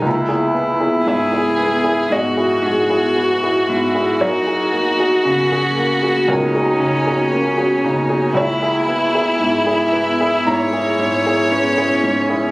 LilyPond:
<<
  \new Staff \with { instrumentName = "Violin" } { \time 4/4 \key cis \dorian \tempo 4 = 58 r4 gis'4 fis'2 | fis'2 cis'2 | e'2 cis''2 | }
  \new Staff \with { instrumentName = "Ambient pad" } { \time 4/4 \key cis \dorian <b e' gis'>1 | <ais fis' gis'>1 | <b e' gis'>1 | }
  \new Staff \with { instrumentName = "Cello" } { \time 4/4 \key cis \dorian e'2 fis'8 gis'8 fis'8 e'8 | dis'4 cis'4 dis'4 cis'8 dis'8 | e'4 e'2 cis'4 | }
  \new Staff \with { instrumentName = "Upright piano" } { \time 4/4 \key cis \dorian << { r4 e''4 dis''2 | cis''2 ais'2 | cis''2 ais''2 | } \\ { cis,16 <e' gis'>16 b16 <e' gis'>16 gis,16 <e' gis'>16 b16 <e' gis'>16 gis,16 <e' gis'>16 gis,16 <e' gis'>16 b16 <e' gis'>16 gis,16 <e' gis'>16 | fis,16 <fis' gis'>16 ais16 <fis' gis'>16 cis16 <fis' gis'>16 ais16 <fis' gis'>16 cis,16 <fis' gis'>16 cis16 <fis' gis'>16 ais16 <fis' gis'>16 cis16 <fis' gis'>16 | cis,16 <e' gis'>16 b16 <e' gis'>16 gis,16 <e' gis'>16 b16 <e' gis'>16 gis,16 <e' gis'>16 gis,16 <e' gis'>16 b16 <e' gis'>16 gis,16 <e' gis'>16 | } >> }
>>